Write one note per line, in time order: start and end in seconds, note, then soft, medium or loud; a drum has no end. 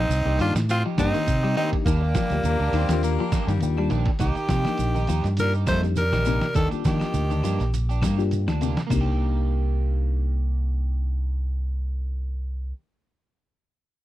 0.00 0.37 C4 loud
0.00 0.37 D#4 loud
0.09 0.24 C2 loud
0.09 ride bell medium
0.09 shekere loud
0.25 0.38 C2 medium
0.25 0.58 A#3 medium
0.25 0.58 D4 medium
0.25 0.37 D#4 medium
0.25 0.59 D#4 medium
0.25 0.37 G4 medium
0.25 0.59 G4 medium
0.38 0.54 G2 loud
0.38 0.65 D#3 medium
0.38 0.57 A#3 medium
0.38 0.54 D4 medium
0.38 0.57 D#4 medium
0.38 0.54 F4 medium
0.38 0.58 G4 medium
0.38 open hi-hat medium
0.38 claves medium
0.38 shekere soft
0.55 0.82 A2 loud
0.55 snare medium
0.55 shekere medium
0.69 0.83 C4 loud
0.69 0.83 F4 loud
0.69 snare soft
0.69 ride bell medium
0.69 shekere medium
0.84 1.10 F3 medium
0.84 0.97 D#4 soft
0.84 0.98 G4 medium
0.98 1.12 G2 loud
0.98 1.16 A#3 medium
0.98 1.24 A#3 medium
0.98 1.53 C4 loud
0.98 1.25 D4 medium
0.98 1.17 D#4 medium
0.98 1.25 D#4 medium
0.98 1.53 D#4 loud
0.98 1.17 G4 medium
0.98 1.25 G4 medium
0.98 kick medium
0.98 snare medium
0.98 ride bell medium
0.98 claves medium
0.98 shekere medium
1.14 1.39 D#3 medium
1.14 snare soft
1.14 ride bell medium
1.14 shekere soft
1.27 1.54 C3 loud
1.27 kick medium
1.27 ride bell medium
1.27 shekere medium
1.43 1.55 G3 medium
1.43 1.55 D#4 soft
1.43 1.56 G4 medium
1.43 claves medium
1.56 1.82 D#3 medium
1.56 1.75 A#3 medium
1.56 1.86 A#3 medium
1.56 1.71 C4 medium
1.56 1.86 D4 medium
1.56 1.75 D#4 medium
1.56 1.86 D#4 medium
1.56 1.70 D#4 loud
1.56 1.86 G4 medium
1.56 1.76 G4 medium
1.56 ride bell medium
1.56 shekere soft
1.73 kick medium
1.73 ride bell soft
1.86 2.13 D#2 loud
1.86 2.12 D#3 loud
1.86 3.58 G3 medium
1.86 3.58 A#3 medium
1.86 2.02 A#3 medium
1.86 2.02 D4 medium
1.86 2.01 G4 medium
1.86 kick medium
1.86 ride bell medium
1.86 claves medium
1.86 shekere medium
2.02 2.15 D4 soft
2.02 2.15 G4 medium
2.15 2.41 F3 medium
2.15 2.34 A#3 medium
2.15 2.34 D4 medium
2.15 2.35 G4 medium
2.15 kick medium
2.15 snare medium
2.15 ride bell medium
2.15 shekere medium
2.30 2.43 D2 medium
2.30 2.57 A#3 medium
2.30 2.57 D4 medium
2.30 2.58 F4 medium
2.30 2.58 G4 medium
2.30 ride bell medium
2.30 claves medium
2.30 shekere soft
2.44 2.59 D#2 medium
2.44 2.78 A#3 loud
2.44 ride bell soft
2.44 shekere loud
2.60 2.72 D2 medium
2.60 2.73 D4 medium
2.60 2.73 G4 medium
2.73 2.88 D#2 medium
2.73 2.99 D#3 medium
2.73 2.92 A#3 medium
2.73 2.91 C4 loud
2.73 2.93 D4 medium
2.73 2.93 G4 medium
2.73 open hi-hat medium
2.73 claves medium
2.73 shekere soft
2.88 3.16 D#2 medium
2.88 3.22 A#3 medium
2.88 3.03 C4 loud
2.88 3.22 D4 medium
2.88 3.22 F4 medium
2.88 3.23 G4 loud
2.88 snare medium
2.88 ride bell medium
2.88 shekere medium
3.03 3.49 A#3 loud
3.03 snare soft
3.03 ride bell medium
3.03 shekere medium
3.19 3.45 F3 medium
3.19 3.31 D4 soft
3.19 3.32 G4 medium
3.32 3.51 A#3 medium
3.32 3.51 D4 medium
3.32 3.51 G4 medium
3.32 kick medium
3.32 snare medium
3.32 ride bell medium
3.32 claves medium
3.32 shekere loud
3.47 3.61 G2 loud
3.47 3.74 D#3 medium
3.47 3.61 G3 medium
3.47 snare soft
3.47 ride bell medium
3.47 shekere soft
3.61 3.88 D#2 loud
3.61 4.17 G3 medium
3.61 3.88 A#3 medium
3.61 3.88 D4 medium
3.61 3.89 F4 medium
3.61 3.89 G4 loud
3.61 ride bell medium
3.61 shekere medium
3.77 3.89 G3 medium
3.77 3.89 D4 soft
3.77 muted clean electric guitar stroke medium
3.77 claves medium
3.90 4.05 A#1 medium
3.90 4.16 D#3 medium
3.90 4.09 A#3 medium
3.90 4.09 D4 medium
3.90 4.10 G4 medium
3.90 ride bell soft
3.90 shekere soft
4.05 muted fingered electric bass stroke soft
4.05 kick medium
4.05 snare soft
4.05 ride bell medium
4.19 4.35 C2 medium
4.19 4.45 D#3 medium
4.19 5.34 D#3 medium
4.19 4.36 A#3 medium
4.19 4.36 D#4 medium
4.19 4.35 G4 medium
4.19 5.34 G4 medium
4.19 kick medium
4.19 closed hi-hat medium
4.19 claves medium
4.19 shekere medium
4.35 4.48 D#4 soft
4.35 4.49 G4 medium
4.35 muted fingered electric bass stroke soft
4.35 closed hi-hat soft
4.35 shekere soft
4.48 4.64 C3 medium
4.48 4.75 F3 medium
4.48 4.68 A#3 medium
4.48 4.68 D#4 medium
4.48 4.69 G4 medium
4.48 kick medium
4.48 snare medium
4.48 closed hi-hat medium
4.48 shekere medium
4.64 4.98 A#3 medium
4.64 4.98 D4 medium
4.64 4.98 D#4 medium
4.64 4.98 G4 medium
4.64 snare medium
4.64 closed hi-hat soft
4.64 claves medium
4.64 shekere soft
4.78 5.06 A#1 medium
4.78 closed hi-hat medium
4.78 shekere medium
4.95 5.07 D#3 medium
4.95 5.07 D#4 medium
4.95 5.08 G4 medium
4.95 shekere soft
5.07 5.23 D#2 medium
5.07 5.34 F3 medium
5.07 5.27 A#3 medium
5.07 5.27 D#4 medium
5.07 5.27 G4 medium
5.07 closed hi-hat medium
5.07 claves medium
5.07 shekere medium
5.24 5.67 G2 loud
5.24 snare soft
5.24 closed hi-hat soft
5.24 shekere soft
5.37 5.52 A#3 medium
5.37 5.52 D4 medium
5.37 5.52 D#4 medium
5.37 5.52 F4 medium
5.37 5.53 A#4 loud
5.37 closed hi-hat medium
5.37 shekere medium
5.41 5.54 G3 medium
5.53 5.66 D#4 soft
5.53 5.67 G4 soft
5.53 closed hi-hat soft
5.53 shekere soft
5.66 6.14 F2 medium
5.66 5.93 G3 medium
5.66 5.85 A#3 medium
5.66 5.74 D#4 medium
5.66 5.86 D#4 medium
5.66 5.75 F4 medium
5.66 5.81 C5 medium
5.66 kick medium
5.66 snare medium
5.66 closed hi-hat soft
5.66 claves medium
5.66 shekere medium
5.70 5.83 A3 medium
5.82 6.01 A#3 medium
5.82 6.02 D4 medium
5.82 6.02 D#4 medium
5.82 6.02 G4 medium
5.82 snare soft
5.82 closed hi-hat soft
5.82 shekere soft
5.96 6.52 A#4 medium
5.96 snare soft
5.96 closed hi-hat medium
5.96 shekere medium
6.00 6.53 G3 medium
6.12 6.39 A#1 medium
6.12 6.24 D#3 medium
6.12 6.26 D#4 soft
6.12 6.26 G4 medium
6.12 snare medium
6.12 claves medium
6.12 shekere soft
6.25 6.52 C3 medium
6.25 6.46 A#3 medium
6.25 6.45 A#3 medium
6.25 6.46 D4 medium
6.25 6.47 D#4 medium
6.25 6.45 D#4 medium
6.25 6.47 G4 medium
6.25 6.45 G4 medium
6.25 closed hi-hat soft
6.25 shekere medium
6.41 snare medium
6.41 shekere soft
6.54 6.70 D#2 medium
6.54 6.81 D#3 medium
6.54 6.71 D#3 medium
6.54 6.71 A#3 medium
6.54 6.71 D4 medium
6.54 6.70 G4 medium
6.54 6.69 A4 medium
6.54 kick medium
6.54 closed hi-hat medium
6.54 claves medium
6.54 shekere medium
6.71 7.23 A#3 medium
6.71 7.24 D4 medium
6.71 6.84 D4 soft
6.71 7.24 F4 medium
6.71 6.84 G4 medium
6.71 7.24 G4 medium
6.71 muted fingered electric bass stroke soft
6.71 closed hi-hat soft
6.71 shekere soft
6.85 7.00 D#3 medium
6.85 7.70 D#3 medium
6.85 7.11 F3 medium
6.85 7.03 A#3 medium
6.85 7.04 D4 medium
6.85 7.04 G4 medium
6.85 7.70 G4 medium
6.85 kick medium
6.85 snare medium
6.85 closed hi-hat medium
6.85 shekere medium
7.00 snare medium
7.00 claves medium
7.00 shekere soft
7.14 7.41 D2 medium
7.14 closed hi-hat medium
7.14 shekere medium
7.30 7.42 D#3 medium
7.30 7.44 D4 soft
7.30 7.43 G4 medium
7.30 closed hi-hat soft
7.30 shekere soft
7.43 7.58 G2 medium
7.43 7.69 F3 medium
7.43 7.62 A#3 medium
7.43 7.63 D4 medium
7.43 7.63 G4 medium
7.43 snare soft
7.43 closed hi-hat soft
7.43 claves medium
7.43 shekere medium
7.60 8.03 A#1 medium
7.60 snare soft
7.60 closed hi-hat soft
7.60 shekere soft
7.74 closed hi-hat medium
7.74 shekere medium
7.89 8.03 D4 soft
7.89 8.02 G4 medium
7.89 closed hi-hat soft
7.89 shekere soft
8.02 8.47 G2 loud
8.02 8.27 G3 medium
8.02 8.21 A#3 medium
8.02 8.22 G4 medium
8.02 kick medium
8.02 snare medium
8.02 closed hi-hat soft
8.02 claves medium
8.02 shekere medium
8.17 8.70 A#3 loud
8.17 8.70 D4 medium
8.17 8.70 F4 medium
8.17 8.71 G4 loud
8.17 snare soft
8.17 shekere soft
8.31 closed hi-hat medium
8.31 shekere medium
8.47 8.74 D2 medium
8.47 8.59 D#3 medium
8.47 8.61 D4 soft
8.47 muted clean electric guitar stroke medium
8.47 snare medium
8.47 claves medium
8.47 shekere soft
8.61 8.87 C3 medium
8.61 8.80 A#3 medium
8.61 8.80 D4 medium
8.61 8.81 G4 medium
8.61 closed hi-hat soft
8.61 shekere medium
8.77 snare medium
8.77 closed hi-hat soft
8.77 shekere soft
8.87 12.71 C2 medium
8.87 12.74 A#3 medium
8.87 12.71 A#3 medium
8.87 12.71 D4 medium
8.87 kick medium
8.87 floor tom medium
8.87 crash medium
8.91 9.08 C3 medium
8.91 12.72 D#4 medium
8.91 12.73 G4 medium
8.91 claves medium
8.91 shekere medium
9.01 12.81 G4 medium